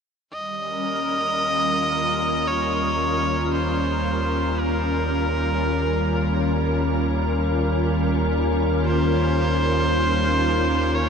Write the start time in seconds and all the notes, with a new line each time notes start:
0.33 D#2 D#3 G3 A#3 D#5
0.54 C#4
0.63 A#4
1.30 F4
2.48 C#5
3.52 C5
4.61 A#4
8.85 C5
10.96 C#5